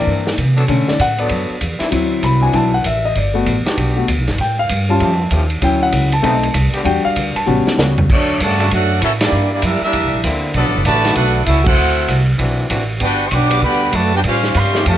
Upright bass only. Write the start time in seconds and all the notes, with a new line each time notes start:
0.07 G2
0.38 C3
0.68 B2
0.88 muted upright bass stroke
0.99 A2
1.30 F#2
1.50 muted upright bass stroke
1.61 E2
1.80 muted upright bass stroke
1.92 D2
2.23 C2
2.53 B1
2.85 A1
3.15 G1
3.46 A1
3.66 muted upright bass stroke
3.77 B1
4.08 D2
4.18 B1
4.28 G1
4.39 A2
4.69 G2
5.00 F2
5.31 D#2
5.62 D2
5.93 C#2
6.24 B1
6.54 C2
6.74 muted upright bass stroke
6.85 E2
7.05 muted upright bass stroke
7.16 D2
7.36 muted upright bass stroke
7.47 A1
7.67 muted upright bass stroke
7.77 C#2
8.10 D2
8.40 G2
8.71 F#2
9.02 A2
9.32 G2
9.63 F#2
9.82 muted upright bass stroke
9.93 E2
10.03 C2
10.13 A#1
10.24 D2
10.54 B1
10.65 A1
10.75 F#1
10.85 A1
11.16 B1
11.47 C#2
11.77 D2
12.08 C2
12.39 B1
12.70 A1
13.01 G1
13.31 B1
13.62 D2
13.93 F#2
14.24 A2
14.55 G2
14.86 F2